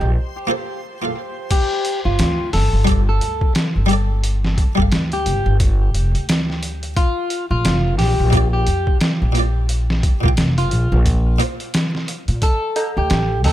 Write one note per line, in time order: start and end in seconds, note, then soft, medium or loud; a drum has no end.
0.00 0.15 A#1 loud
0.00 0.45 A#3 medium
0.00 0.46 F4 medium
0.00 0.11 G4 medium
0.00 0.47 A4 medium
0.00 0.14 C5 medium
0.00 0.48 G5 medium
0.00 tabla na soft
0.47 0.97 A#3 medium
0.47 0.98 F4 medium
0.47 0.99 A4 medium
0.47 0.99 C5 medium
1.02 1.49 A#3 medium
1.02 1.49 F4 medium
1.02 1.50 A4 medium
1.02 1.50 F5 loud
1.51 1.99 G4 medium
1.51 kick loud
1.51 closed hi-hat medium
1.51 crash medium
1.85 closed hi-hat medium
2.05 2.17 G1 medium
2.05 2.49 F4 medium
2.19 2.55 D2 medium
2.19 snare loud
2.19 closed hi-hat medium
2.53 2.71 G1 medium
2.53 3.01 A4 medium
2.53 snare soft
2.53 open hi-hat medium
2.73 3.19 G1 loud
2.85 3.85 G3 medium
2.85 3.86 G4 medium
2.85 kick loud
2.85 closed hi-hat medium
2.89 3.87 A4 medium
2.89 3.88 D5 loud
3.09 3.52 A4 medium
3.21 3.39 D2 medium
3.21 closed hi-hat medium
3.41 kick medium
3.55 snare loud
3.55 closed hi-hat medium
3.76 4.55 G1 medium
3.86 4.71 G3 loud
3.86 4.72 G4 medium
3.86 closed hi-hat medium
3.91 4.74 A4 medium
3.91 4.75 D5 loud
4.24 closed hi-hat medium
4.45 snare soft
4.58 kick medium
4.58 closed hi-hat medium
4.75 4.90 G1 medium
4.75 6.93 G3 medium
4.75 6.94 G4 medium
4.75 kick loud
4.80 6.96 A4 medium
4.80 6.97 F5 medium
4.92 5.27 D2 medium
4.92 snare loud
4.92 closed hi-hat medium
5.12 5.56 G4 medium
5.12 closed hi-hat soft
5.26 5.44 G1 medium
5.26 closed hi-hat medium
5.46 5.91 G1 loud
5.60 kick loud
5.60 closed hi-hat medium
5.94 6.12 F1 medium
5.94 closed hi-hat medium
6.15 6.94 D2 medium
6.15 closed hi-hat soft
6.29 snare loud
6.29 closed hi-hat loud
6.50 snare soft
6.63 closed hi-hat medium
6.83 closed hi-hat soft
6.97 7.45 F4 loud
6.97 kick loud
6.97 closed hi-hat medium
7.30 closed hi-hat medium
7.51 7.63 A#1 loud
7.51 7.95 F4 medium
7.65 7.99 F1 medium
7.65 snare loud
7.65 closed hi-hat medium
7.98 8.16 A#1 medium
7.98 8.47 G4 medium
7.98 snare soft
7.98 open hi-hat medium
8.19 8.64 A#1 loud
8.30 9.30 A#2 medium
8.30 9.31 A#3 medium
8.30 kick loud
8.30 closed hi-hat medium
8.35 9.33 F4 medium
8.35 9.34 D5 loud
8.53 8.97 G4 medium
8.67 8.85 F2 medium
8.67 closed hi-hat medium
8.87 kick medium
9.01 snare loud
9.01 closed hi-hat medium
9.22 10.01 A#1 medium
9.32 10.17 A#2 loud
9.32 10.18 A#3 medium
9.32 closed hi-hat medium
9.37 10.20 F4 medium
9.37 10.21 D5 loud
9.69 closed hi-hat medium
9.90 snare soft
10.03 kick loud
10.03 closed hi-hat medium
10.21 10.36 A#1 loud
10.21 11.35 A#2 medium
10.21 11.37 A#3 medium
10.21 kick loud
10.26 11.38 F4 medium
10.26 11.39 G5 medium
10.37 10.72 F1 medium
10.37 snare loud
10.37 closed hi-hat medium
10.58 11.02 F4 medium
10.58 closed hi-hat soft
10.71 10.90 A#1 medium
10.71 closed hi-hat medium
10.92 11.37 A#1 loud
11.06 kick loud
11.06 closed hi-hat medium
11.39 11.88 A#2 medium
11.39 11.89 A#3 medium
11.39 11.90 F4 medium
11.39 11.90 C5 medium
11.39 closed hi-hat medium
11.60 closed hi-hat soft
11.74 snare loud
11.74 closed hi-hat medium
11.95 snare soft
12.08 closed hi-hat medium
12.28 12.40 A#2 loud
12.28 closed hi-hat soft
12.42 12.91 A4 loud
12.42 kick loud
12.42 closed hi-hat medium
12.42 tabla na soft
12.76 13.09 A4 medium
12.76 closed hi-hat medium
12.76 tabla na medium
12.97 13.09 D2 medium
12.97 13.41 G4 medium
12.97 tabla na soft
13.10 13.45 A1 medium
13.10 snare loud
13.10 closed hi-hat medium
13.10 tabla na soft
13.44 13.53 D2 medium
13.44 13.53 A4 medium
13.44 13.53 G5 medium
13.44 snare soft
13.44 open hi-hat medium
13.44 tabla na medium
13.44 tabla ge medium